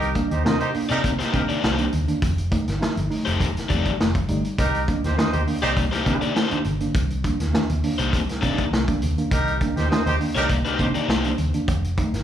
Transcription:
Already playing: C2
0.02 closed hi-hat
0.15 A#3 D4, kick, closed hi-hat
0.31 D#2 D#4 G4 C5, closed hi-hat
0.45 C3 A#3 D4 A#4 C5 D#5, snare
0.60 C3 D#4 G4 C5, closed hi-hat
0.74 A#3 D4, muted fingered electric bass stroke, open hi-hat
0.89 C3 A#3 D#4 G4 A#4 D5, closed hi-hat
1.04 C3, kick, closed hi-hat
1.19 A#3 D#4 G4 C5, snare, closed hi-hat
1.33 C3 D#3 A#3 D4 D#4 G4 A#4, kick, closed hi-hat
1.49 A#3 D4 D#4 G4 D5, closed hi-hat
1.62 C2 A#3 D#4 G4 C5, snare
1.78 D#3 A#3 D4, closed hi-hat
1.92 D#2 C3, closed hi-hat
2.08 D#3 A#3 D4, closed hi-hat
2.22 F1 F3, kick, closed hi-hat
2.38 closed hi-hat
2.51 A3 D#4, kick, closed hi-hat
2.68 G1, snare, closed hi-hat
2.80 A3 D#4, snare
2.96 G1 F3, closed hi-hat
3.10 A3 D#4, open hi-hat
3.25 F1 A3 D#4 G4 C5, closed hi-hat
3.40 F1 F3, kick, closed hi-hat
3.57 snare, closed hi-hat
3.69 F2 G3 A3 D#4 G4 D5, kick, closed hi-hat
3.85 A3 D#4, kick, closed hi-hat
3.99 F1 A3 D#4, snare
4.15 F3, kick, closed hi-hat
4.28 G1 G3 A3 D#4, closed hi-hat
4.45 closed hi-hat
4.58 C2 C3 D#4 G4 A#4, kick, closed hi-hat
4.75 closed hi-hat
4.88 A#3 D4, kick, closed hi-hat
5.03 D#2 D#4 G4 C5, snare, closed hi-hat
5.17 A#3 D4 A#4 C5 D#5, snare
5.32 D#2 C3 D#4 G4 C5, closed hi-hat
5.47 A#3 D4, open hi-hat
5.62 C2 A#3 D#4 G4 C5 D5, closed hi-hat
5.77 C2 C3, kick, closed hi-hat
5.91 A#3 D#4 G4 A#4 C5, snare, closed hi-hat
6.05 C3 D#3 A#3 D4 D#4 G4 A#4, kick, closed hi-hat
6.21 A#3 D4 D#4 G4 D5, closed hi-hat
6.35 A#3 D#4 G4 C5, snare
6.51 D#3 A#3 D4, muted fingered electric bass stroke, closed hi-hat
6.64 G1 C3, closed hi-hat
6.80 D#3 A#3 D4, closed hi-hat
6.94 C2, kick, closed hi-hat
7.10 closed hi-hat
7.24 A#3 D4, kick, closed hi-hat
7.40 D#2, snare, closed hi-hat
7.53 A#3 D4, snare
7.69 D#2 C3, closed hi-hat
7.84 A#3 D4, open hi-hat
7.98 C2 A#3 D#4 G4 C5, closed hi-hat
8.13 C2 C3, kick, closed hi-hat
8.29 snare, closed hi-hat
8.41 C3 D#3 A#3 D4 D#4 G4 D5, kick, closed hi-hat
8.58 A#3 D4, kick, closed hi-hat
8.72 C2, snare
8.88 D#3 A#3 D4, kick, closed hi-hat
9.02 D#2 C3, closed hi-hat
9.18 D#3 A#3 D4, closed hi-hat
9.31 C2 C3 D#4 G4 A#4, kick, closed hi-hat
9.47 closed hi-hat
9.61 A#3 D4, kick, closed hi-hat
9.77 D#2 D#4 G4 C5, snare, closed hi-hat
9.91 A#3 D4 A#4 C5 D#5, snare
10.06 D#2 C3 D#4 G4 C5, closed hi-hat
10.20 A#3 D4, open hi-hat
10.35 C2 A#3 D#4 G4 A#4 D5, closed hi-hat
10.49 C2 C3, kick, closed hi-hat
10.65 A#3 D#4 G4 A#4 C5, closed hi-hat
10.79 C3 D#3 A#3 D4 D#4 G4 C5, kick, closed hi-hat
10.94 A#3 D4 D#4 G4 D5, closed hi-hat
11.08 C2 A#3 D#4 G4 C5, snare
11.24 D#3 A#3 D4, closed hi-hat
11.38 D#2 C3, closed hi-hat
11.54 D#3 A#3 D4, closed hi-hat
11.68 F1 F3, kick, closed hi-hat
11.84 closed hi-hat
11.98 A3 D#4, kick, closed hi-hat
12.13 G1, snare, closed hi-hat

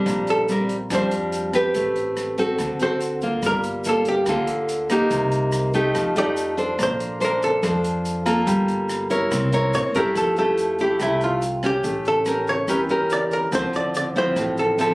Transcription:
Already playing: G3 C4 D4
0.06 A#1 A#2, kick, cross-stick, closed hi-hat, shaker
0.27 A4, closed hi-hat, shaker
0.49 G3 C4 D4 A#4, closed hi-hat, shaker
0.69 kick, closed hi-hat, shaker
0.90 F2 F3 G3 C4 D4, kick, cross-stick, closed hi-hat, shaker
0.95 C5
1.11 closed hi-hat, shaker
1.32 closed hi-hat, shaker
1.53 C4 G4 B4, kick, cross-stick, closed hi-hat, shaker
1.74 A1 A3, kick, closed hi-hat, shaker
1.96 closed hi-hat, shaker
2.17 cross-stick, closed hi-hat, shaker
2.38 C4 F#4 A4, kick, closed hi-hat, shaker
2.58 D2 D3, kick, cross-stick, closed hi-hat, shaker
2.80 C4 F#4 A4 C5, closed hi-hat, shaker
3.00 closed hi-hat, shaker
3.21 A#3 F4, kick, closed hi-hat, shaker
3.42 G1 G3, kick, cross-stick, closed hi-hat, shaker
3.46 A#4
3.63 closed hi-hat, shaker
3.84 A#3 F4 A4, closed hi-hat, shaker
3.89 A4
4.05 G4, kick, closed hi-hat, shaker
4.26 D2 D3 A#3 F4 A4, kick, cross-stick, closed hi-hat, shaker
4.47 closed hi-hat, shaker
4.69 closed hi-hat, shaker
4.90 A#3 D#4 G4, kick, cross-stick, closed hi-hat, shaker
5.11 C2 C3, kick, closed hi-hat, shaker
5.31 closed hi-hat, shaker
5.52 cross-stick, closed hi-hat, shaker
5.74 A3 D#4 G4, kick, closed hi-hat, shaker
5.95 F2 F3, kick, cross-stick, closed hi-hat, shaker
6.16 A3 D#4 G4 D5, closed hi-hat, shaker
6.37 closed hi-hat, shaker
6.57 D4 A4 C5, kick, closed hi-hat, shaker
6.79 A#1 A#3, kick, cross-stick, closed hi-hat, shaker
6.83 C5
7.00 closed hi-hat, shaker
7.20 D4 A4 C5, closed hi-hat, shaker
7.25 A#4
7.42 A4, kick, closed hi-hat, shaker
7.63 F2 F3 D4 A4 C5, kick, cross-stick, closed hi-hat, shaker
7.84 closed hi-hat, shaker
8.05 closed hi-hat, shaker
8.26 A#3 F4 A4, kick, cross-stick, closed hi-hat, shaker
8.47 G1 G3, kick, closed hi-hat, shaker
8.68 closed hi-hat, shaker
8.89 cross-stick, closed hi-hat, shaker
9.10 E4 A#4 C#5, kick, closed hi-hat, shaker
9.31 C2 C4, kick, cross-stick, closed hi-hat, shaker
9.52 E4 A#4 C#5, closed hi-hat, shaker
9.74 A2 C#5, closed hi-hat, shaker
9.95 G2 A3 E4 G4 A#4, kick, closed hi-hat, shaker
10.15 F2 F3 A4, kick, cross-stick, closed hi-hat, shaker
10.36 A3 E4 G4 A4, closed hi-hat, shaker
10.57 closed hi-hat, shaker
10.79 A3 E4 G4, kick, closed hi-hat, shaker
11.00 C2 C3 A3 E4 G4, kick, cross-stick, closed hi-hat, shaker
11.21 F4, closed hi-hat, shaker
11.42 closed hi-hat, shaker
11.63 C#4 G4, kick, cross-stick, closed hi-hat, shaker
11.83 A1 A3, kick, closed hi-hat, shaker
12.05 A4, closed hi-hat, shaker
12.26 C#4 G4 A#4, cross-stick, closed hi-hat, shaker
12.47 C#5, kick, closed hi-hat, shaker
12.68 E2 E3 C#4 G4 A#4, kick, cross-stick, closed hi-hat, shaker
12.89 C#4 G4 A#4, closed hi-hat, shaker
13.10 D5, closed hi-hat, shaker
13.31 A#4, kick, closed hi-hat, shaker
13.52 D2 D3 F3 C4 E4 C5, kick, cross-stick, closed hi-hat, shaker
13.73 D5, closed hi-hat, shaker
13.95 D5, closed hi-hat, shaker
14.15 F3 C4 E4 C5, kick, closed hi-hat, shaker
14.36 A1 A2, kick, cross-stick, closed hi-hat, shaker
14.57 A4, closed hi-hat, shaker
14.78 F3 C4 E4 A4, closed hi-hat, shaker

